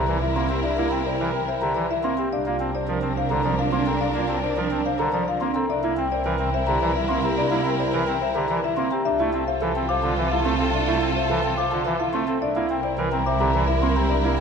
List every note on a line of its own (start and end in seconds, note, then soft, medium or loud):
0.00 2.18 C2 medium
0.00 2.14 E4 medium
0.00 0.13 G4 medium
0.00 2.14 A#4 medium
0.00 0.12 A#5 medium
0.08 0.19 E3 medium
0.08 0.27 D5 medium
0.22 0.41 E4 medium
0.22 0.40 E5 medium
0.36 0.47 A#3 medium
0.36 0.55 C4 medium
0.36 0.55 C6 medium
0.50 0.60 C4 medium
0.50 0.69 G4 medium
0.63 0.83 D4 medium
0.63 0.82 D5 medium
0.63 0.82 E5 medium
0.77 0.88 A#3 medium
0.77 0.97 E4 medium
0.91 1.02 C4 medium
0.91 1.11 G5 medium
1.06 1.25 C5 medium
1.06 1.25 D5 medium
1.06 1.25 G5 medium
1.20 1.31 E3 medium
1.20 1.39 A#4 medium
1.34 1.53 G5 medium
1.48 1.67 C5 medium
1.48 1.67 E5 medium
1.62 1.73 D3 medium
1.62 1.81 G4 medium
1.62 1.81 A#5 medium
1.75 1.86 E3 medium
1.75 1.95 D5 medium
1.90 2.09 E4 medium
1.90 2.09 E5 medium
2.03 2.14 A#3 medium
2.03 2.23 C4 medium
2.03 2.23 C6 medium
2.18 2.29 C4 medium
2.18 2.37 G4 medium
2.31 5.54 C2 medium
2.31 5.50 D4 medium
2.31 2.51 D4 medium
2.31 5.50 A#4 medium
2.31 2.51 D5 medium
2.31 2.51 F5 medium
2.46 2.57 A#3 medium
2.46 2.65 F4 medium
2.60 2.71 C4 medium
2.60 2.79 A5 medium
2.75 2.93 C5 medium
2.75 2.93 D5 medium
2.75 2.93 A5 medium
2.88 2.99 F3 medium
2.88 3.07 A#4 medium
3.02 3.13 C4 medium
3.02 3.21 A5 medium
3.17 3.35 C5 medium
3.17 3.35 F5 loud
3.30 3.41 D3 medium
3.30 3.49 A4 medium
3.30 3.49 A#5 loud
3.44 3.55 F3 medium
3.44 3.63 D5 medium
3.59 3.77 F4 medium
3.59 3.77 F5 medium
3.72 3.83 A#3 medium
3.72 3.91 C4 medium
3.72 3.91 C6 medium
3.86 3.97 C4 medium
3.86 4.05 A4 medium
3.86 4.05 A#5 medium
4.01 4.19 D4 medium
4.01 4.19 D5 medium
4.01 4.19 F5 medium
4.14 4.25 A#3 medium
4.14 4.33 F4 medium
4.28 4.39 C4 medium
4.28 4.48 A5 medium
4.43 4.62 C5 medium
4.43 4.62 D5 medium
4.43 4.61 A5 medium
4.57 4.67 F3 medium
4.57 4.76 A#4 medium
4.71 4.81 C4 medium
4.71 4.90 A5 medium
4.85 5.04 C5 medium
4.85 5.04 F5 loud
4.99 5.10 D3 medium
4.99 5.18 A4 medium
4.99 5.17 A#5 medium
5.13 5.23 F3 medium
5.13 5.32 D5 medium
5.28 5.46 F4 medium
5.28 5.46 F5 medium
5.41 5.52 A#3 medium
5.41 5.60 C4 medium
5.41 5.59 C6 loud
5.55 5.66 C4 medium
5.55 5.74 A4 medium
5.55 5.73 A#5 medium
5.68 8.91 C2 medium
5.68 5.88 D4 medium
5.68 8.87 E4 medium
5.68 8.87 A#4 medium
5.68 5.88 D5 loud
5.68 5.88 E5 medium
5.83 5.94 A#3 medium
5.83 6.02 E4 medium
5.97 6.08 C4 medium
5.97 6.16 G5 medium
6.11 6.30 C5 medium
6.11 6.30 D5 medium
6.11 6.29 G5 medium
6.25 6.36 E3 medium
6.25 6.44 A#4 loud
6.39 6.50 C4 medium
6.39 6.58 G5 medium
6.54 6.72 C5 medium
6.54 6.72 E5 medium
6.67 6.78 D3 medium
6.67 6.86 G4 medium
6.67 6.85 A#5 medium
6.81 6.92 E3 medium
6.81 7.00 D5 medium
6.96 7.14 E4 medium
6.96 7.14 E5 medium
7.09 7.19 A#3 medium
7.09 7.28 C4 medium
7.09 7.27 C6 medium
7.22 7.34 C4 medium
7.22 7.42 G4 medium
7.22 7.41 A#5 medium
7.37 7.56 D4 medium
7.37 7.56 D5 loud
7.37 7.55 E5 medium
7.51 7.62 A#3 medium
7.51 7.70 E4 medium
7.65 7.76 C4 medium
7.65 7.84 G5 medium
7.78 7.98 C5 medium
7.78 7.98 D5 medium
7.78 7.97 G5 medium
7.93 8.04 E3 medium
7.93 8.12 A#4 loud
8.07 8.18 C4 medium
8.07 8.26 G5 medium
8.22 8.40 C5 medium
8.22 8.40 E5 medium
8.35 8.46 D3 medium
8.35 8.54 G4 medium
8.35 8.54 A#5 medium
8.49 8.60 E3 medium
8.49 8.68 D5 medium
8.64 8.82 E4 medium
8.64 8.82 E5 loud
8.77 8.88 A#3 medium
8.77 8.96 C4 loud
8.77 8.96 C6 medium
8.91 9.02 C4 medium
8.91 9.10 G4 medium
8.91 9.10 A#5 medium
9.05 12.27 C2 medium
9.05 9.24 D4 medium
9.05 12.24 F4 medium
9.05 12.24 A4 medium
9.05 9.24 E5 medium
9.05 9.24 E5 loud
9.20 9.30 A3 medium
9.20 9.38 E4 medium
9.33 9.44 C4 medium
9.33 9.52 A5 medium
9.47 9.66 C5 medium
9.47 9.66 E5 medium
9.47 9.66 F5 medium
9.62 9.72 E3 medium
9.62 9.80 A4 medium
9.75 9.86 C4 medium
9.75 9.94 A5 medium
9.89 10.08 C5 medium
9.89 10.08 F5 loud
9.89 10.08 D6 medium
10.03 10.14 D3 medium
10.03 10.22 F4 medium
10.03 10.22 A5 medium
10.17 10.28 E3 medium
10.17 10.36 E5 medium
10.31 10.50 E4 medium
10.31 10.50 F5 medium
10.45 10.56 A3 medium
10.45 10.64 C4 medium
10.45 10.64 C6 medium
10.59 10.70 C4 medium
10.59 10.78 A4 medium
10.59 10.78 A5 medium
10.73 10.92 D4 medium
10.73 10.92 E5 medium
10.73 10.92 E5 loud
10.87 10.98 A3 medium
10.87 11.06 E4 loud
11.02 11.12 C4 medium
11.02 11.20 A5 medium
11.15 11.34 C5 medium
11.15 11.35 E5 medium
11.15 11.34 F5 medium
11.30 11.41 E3 medium
11.30 11.48 A4 loud
11.44 11.54 C4 medium
11.44 11.62 A5 medium
11.57 11.76 C5 medium
11.57 11.76 F5 loud
11.57 11.76 D6 medium
11.71 11.83 D3 medium
11.71 11.90 F4 medium
11.71 11.90 A5 medium
11.86 11.96 E3 medium
11.86 12.04 E5 medium
12.00 12.18 E4 medium
12.00 12.18 F5 medium
12.14 12.24 A3 medium
12.14 12.32 C4 medium
12.14 12.32 C6 medium
12.28 12.38 C4 medium
12.28 12.46 A4 medium
12.28 12.46 A5 medium
12.42 14.40 C2 medium
12.42 12.60 D4 medium
12.42 14.40 E4 medium
12.42 14.40 A#4 medium
12.42 12.60 D5 loud
12.42 12.60 E5 medium
12.56 12.66 A#3 medium
12.56 12.74 E4 medium
12.70 12.80 C4 medium
12.70 12.88 G5 medium
12.83 13.02 C5 medium
12.83 13.02 D5 medium
12.83 13.02 G5 medium
12.98 13.09 E3 medium
12.98 13.17 A#4 loud
13.12 13.23 C4 medium
13.12 13.30 G5 medium
13.12 13.30 A#5 medium
13.26 13.45 C5 medium
13.26 13.45 E5 loud
13.26 13.44 D6 medium
13.40 13.51 D3 medium
13.40 13.59 G4 medium
13.40 13.59 A#5 medium
13.54 13.65 E3 medium
13.54 13.72 D5 medium
13.68 13.87 E4 medium
13.68 13.86 E5 loud
13.82 13.93 A#3 medium
13.82 14.01 C4 loud
13.82 14.01 C6 medium
13.96 14.07 C4 medium
13.96 14.15 G4 medium
13.96 14.15 A#5 medium
14.09 14.29 D4 medium
14.09 14.28 D5 loud
14.09 14.29 E5 medium
14.25 14.35 A#3 medium
14.25 14.40 E4 medium